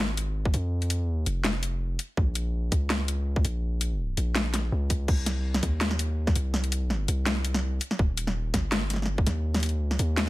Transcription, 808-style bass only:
0.00 0.52 G#1 medium
0.54 1.04 F2 medium
1.04 1.25 E2 medium
1.27 1.98 F1 medium
2.17 2.71 A#1 medium
2.72 3.43 C#2 medium
3.45 4.16 A#1 loud
4.17 4.71 A#1 medium
4.72 5.07 C#2 loud
5.08 5.62 C2 medium
5.63 6.34 D#2 medium
6.36 7.07 C2 medium
7.08 7.80 C2 medium
7.99 8.52 D#1 loud
8.54 9.25 G1 medium
9.27 9.77 D#2 medium
9.77 9.98 D2 medium
9.99 10.29 D#2 medium

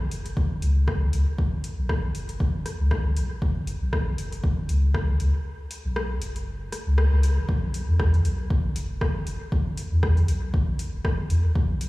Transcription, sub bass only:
0.11 0.58 F#1 medium
0.62 1.09 C#2 medium
1.13 1.24 C#2 loud
1.78 2.11 B1 medium
2.15 2.62 F#1 medium
2.80 3.12 C#2 loud
3.17 3.28 B1 loud
3.42 3.76 F#1 loud
3.82 4.14 B1 medium
4.18 4.65 F#1 medium
4.69 5.16 C#2 medium
5.20 5.31 C#2 loud
5.85 6.18 B1 medium
6.22 6.68 F#1 medium
6.87 6.97 C#2 loud
6.98 7.09 C#2 loud
7.12 7.39 C#2 medium
7.37 7.46 F#1 medium
7.49 7.83 B1 loud
7.88 8.21 E2 loud
8.25 8.72 B1 medium
8.76 9.23 F#1 medium
9.27 9.38 F#1 loud
9.92 10.24 E2 loud
10.28 10.75 B1 medium
10.93 11.26 F#1 loud
11.30 11.41 E2 loud
11.55 11.89 B1 medium

